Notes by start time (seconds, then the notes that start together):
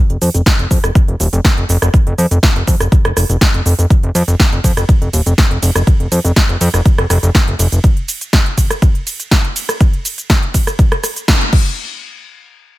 0.10 F1, closed hi-hat
0.22 F2, open hi-hat, shaker
0.34 F1, closed hi-hat, shaker
0.46 kick, snare, closed hi-hat, shaker
0.59 F1, closed hi-hat
0.71 F2, kick, open hi-hat, shaker
0.84 F1, cross-stick, closed hi-hat, shaker
0.95 kick, closed hi-hat, shaker
1.08 F1, closed hi-hat
1.20 D#1, open hi-hat, shaker
1.33 F1, closed hi-hat, shaker
1.45 kick, snare, closed hi-hat, shaker
1.57 F1, closed hi-hat
1.69 F1, open hi-hat, shaker
1.82 F1, cross-stick, closed hi-hat, shaker
1.94 kick, closed hi-hat, shaker
2.07 F1, closed hi-hat
2.18 F2, open hi-hat, shaker
2.31 F1, closed hi-hat, shaker
2.43 kick, snare, closed hi-hat, shaker
2.56 F1, closed hi-hat
2.67 F2, kick, open hi-hat, shaker
2.80 F1, cross-stick, closed hi-hat, shaker
2.92 kick, closed hi-hat, shaker
3.05 F1, cross-stick, closed hi-hat
3.17 F1, cross-stick, open hi-hat, shaker
3.30 F1, closed hi-hat, shaker
3.41 kick, snare, closed hi-hat, shaker
3.54 F1, closed hi-hat
3.66 F1, open hi-hat, shaker
3.79 F1, closed hi-hat, shaker
3.90 kick, closed hi-hat, shaker
4.03 F1, closed hi-hat
4.15 F2, open hi-hat, ride, shaker
4.28 F1, closed hi-hat, shaker
4.40 kick, snare, closed hi-hat, shaker
4.52 F1, closed hi-hat
4.64 F2, kick, open hi-hat, ride, shaker
4.77 F1, cross-stick, closed hi-hat, shaker
4.89 kick, closed hi-hat, shaker
5.02 F1, closed hi-hat
5.13 D#1, open hi-hat, ride, shaker
5.26 F1, closed hi-hat, shaker
5.38 kick, snare, closed hi-hat, shaker
5.51 F1, closed hi-hat
5.63 F1, open hi-hat, ride, shaker
5.75 F1, cross-stick, closed hi-hat, shaker
5.87 kick, closed hi-hat, shaker
6.00 F1, closed hi-hat
6.12 F2, open hi-hat, ride, shaker
6.25 F1, closed hi-hat, shaker
6.36 kick, snare, closed hi-hat, shaker
6.49 F1, closed hi-hat
6.61 F2, open hi-hat, ride, shaker
6.74 F1, cross-stick, closed hi-hat, shaker
6.86 kick, closed hi-hat, shaker
6.98 F1, cross-stick, closed hi-hat
7.10 F1, cross-stick, open hi-hat, ride, shaker
7.23 F1, closed hi-hat, shaker
7.35 kick, snare, closed hi-hat, shaker
7.48 F1, closed hi-hat
7.59 F1, open hi-hat, ride, shaker
7.72 F1, closed hi-hat, shaker
7.84 kick, closed hi-hat, shaker
7.97 closed hi-hat
8.08 open hi-hat, ride, shaker
8.21 closed hi-hat, shaker
8.33 kick, snare, closed hi-hat, shaker
8.46 closed hi-hat
8.58 kick, open hi-hat, ride, shaker
8.70 cross-stick, closed hi-hat, shaker
8.82 kick, closed hi-hat, shaker
8.95 closed hi-hat
9.07 open hi-hat, ride, shaker
9.20 closed hi-hat, shaker
9.31 kick, snare, closed hi-hat, shaker
9.44 closed hi-hat
9.56 open hi-hat, ride, shaker
9.69 cross-stick, closed hi-hat, shaker
9.81 kick, closed hi-hat, shaker
9.93 closed hi-hat
10.05 open hi-hat, ride, shaker
10.18 closed hi-hat, shaker
10.30 kick, snare, closed hi-hat, shaker
10.43 closed hi-hat
10.54 kick, open hi-hat, ride, shaker
10.67 cross-stick, closed hi-hat, shaker
10.79 kick, closed hi-hat, shaker
10.92 cross-stick, closed hi-hat
11.04 cross-stick, open hi-hat, ride, shaker
11.16 closed hi-hat, shaker
11.28 kick, snare, closed hi-hat, shaker
11.41 closed hi-hat
11.53 kick, crash